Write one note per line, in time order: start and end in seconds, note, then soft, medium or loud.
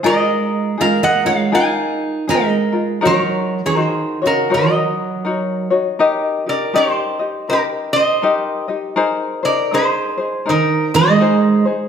0.03 0.75 G#3 medium
0.03 0.78 D#4 medium
0.03 0.78 F4 loud
0.03 0.76 G#4 medium
0.03 0.80 A#4 loud
0.03 0.76 A#4 medium
0.03 0.81 D#5 loud
0.78 1.01 G#3 medium
0.78 1.24 D#4 medium
0.78 1.24 F4 medium
0.78 1.23 G#4 medium
0.78 1.23 A#4 medium
0.78 1.02 A#4 medium
0.78 1.04 F5 loud
1.03 1.24 A#3 medium
1.03 1.24 D#5 medium
1.03 1.27 F#5 loud
1.24 1.52 G#3 medium
1.24 1.51 D#4 soft
1.24 1.52 F4 soft
1.24 1.52 A#4 medium
1.24 1.52 C#5 medium
1.24 1.53 F5 medium
1.52 2.28 D#4 medium
1.52 2.25 D#4 medium
1.52 2.28 F4 medium
1.52 2.26 G#4 medium
1.52 2.29 A#4 medium
1.52 2.25 F5 medium
1.52 2.31 G#5 loud
2.28 2.99 G#3 medium
2.28 2.73 D#4 medium
2.28 2.72 F4 medium
2.28 2.72 G#4 medium
2.28 2.71 A#4 medium
2.28 3.00 A#4 medium
2.28 3.06 D#5 medium
2.72 3.01 D#4 soft
2.72 3.02 F4 medium
2.72 3.00 A#4 medium
3.01 3.76 D#4 medium
3.01 3.76 F#4 loud
3.01 3.75 A#4 medium
3.01 3.74 C#5 medium
3.05 3.60 F#3 medium
3.05 3.60 A#4 medium
3.05 3.66 C#5 loud
3.66 4.21 D#3 medium
3.66 4.21 G#4 medium
3.66 3.77 C#5 medium
3.75 4.23 D#4 medium
3.75 4.22 F#4 medium
3.75 4.21 A#4 medium
3.75 4.27 C5 medium
4.22 4.51 C#3 medium
4.22 4.49 D#4 soft
4.22 4.49 F#4 soft
4.22 4.50 C#5 medium
4.27 4.51 F#4 medium
4.27 4.53 A#4 medium
4.50 5.25 D#4 medium
4.50 5.25 F#4 medium
4.50 5.24 A#4 medium
4.50 5.25 C#5 medium
4.54 5.69 F#3 medium
4.54 5.69 A#4 medium
4.54 5.69 D#5 medium
5.25 5.71 D#4 medium
5.25 5.70 F#4 medium
5.25 5.71 A#4 medium
5.25 5.69 C#5 medium
5.70 5.98 D#4 soft
5.70 5.99 F#4 medium
5.70 6.00 C#5 medium
5.99 6.46 D#4 loud
5.99 6.45 G4 loud
5.99 6.46 A#4 loud
5.99 6.46 D#5 loud
6.46 6.73 D#4 soft
6.46 6.73 G4 medium
6.46 6.74 A#4 medium
6.46 6.75 D5 medium
6.73 7.20 D#4 medium
6.73 7.19 G4 medium
6.73 7.20 A#4 medium
6.73 7.49 C5 loud
6.73 7.18 D#5 medium
6.77 7.46 G4 medium
7.19 7.49 D#4 soft
7.19 7.48 G4 soft
7.19 7.48 D#5 medium
7.49 8.22 D#4 medium
7.49 8.22 G4 medium
7.49 7.65 G4 medium
7.49 8.22 A#4 medium
7.49 7.62 A#4 medium
7.49 8.23 D#5 medium
7.93 8.66 C5 medium
7.93 8.64 D#5 loud
8.22 8.68 D#4 medium
8.22 8.68 G4 medium
8.22 8.69 A#4 medium
8.22 8.67 D#5 loud
8.68 8.95 D#4 soft
8.68 8.96 G4 medium
8.68 8.97 D#5 medium
8.96 9.43 D#4 loud
8.96 9.43 G#4 loud
8.96 9.43 A#4 loud
8.96 9.42 C5 loud
9.43 9.72 D#4 soft
9.43 9.72 G#4 soft
9.43 9.71 A#4 medium
9.43 9.72 C5 medium
9.43 9.71 D5 medium
9.72 10.18 D#4 medium
9.72 10.18 G#4 medium
9.72 10.43 G#4 medium
9.72 10.18 A#4 medium
9.72 10.16 C5 medium
9.72 10.50 C5 medium
10.18 10.45 D#4 soft
10.18 10.46 G#4 soft
10.18 10.46 C5 medium
10.46 10.91 D#3 medium
10.46 11.20 D#4 medium
10.46 10.91 D#4 medium
10.46 11.21 G#4 medium
10.46 11.20 A#4 medium
10.46 11.20 C5 medium
10.50 10.94 A#4 medium
10.94 11.64 G#3 medium
10.94 11.64 C5 medium
10.94 11.65 D#5 loud
11.20 11.66 D#4 medium
11.20 11.65 G#4 medium
11.20 11.67 A#4 medium
11.20 11.64 C5 loud
11.65 11.89 D#4 soft
11.65 11.89 G#4 medium
11.65 11.89 C5 medium